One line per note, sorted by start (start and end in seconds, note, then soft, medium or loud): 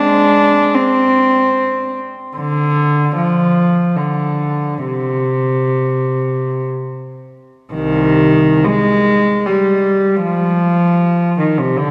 0.00 0.71 G#3 medium
0.00 0.75 D4 medium
0.75 1.96 C4 medium
2.37 3.12 D3 medium
3.16 3.97 F3 medium
3.96 4.86 D3 soft
4.87 6.66 C3 soft
7.74 8.63 C2 soft
7.74 8.63 D#3 medium
8.65 9.45 G#3 medium
9.46 10.23 G3 medium
10.22 11.37 F3 medium
11.40 11.59 D#3 soft
11.60 11.79 C3 soft
11.77 11.91 D3 medium